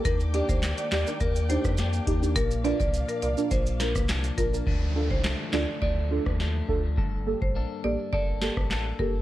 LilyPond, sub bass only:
\new Staff \with { instrumentName = "Sub bass" } { \clef bass \time 4/4 \key d \phrygian \tempo 4 = 104 ees,8. d,8 r16 ees,16 r16 ees,8. f,8. ees,8 | bes,,8. c,8 r16 c,16 r16 bes,,8. c,8. bes,,8 | d,8. c,8 r16 d,16 r16 d,8. ees,8. d,8 | g,,8. a,,8 r16 a,,16 r16 g,,8. a,,8. g,,8 | }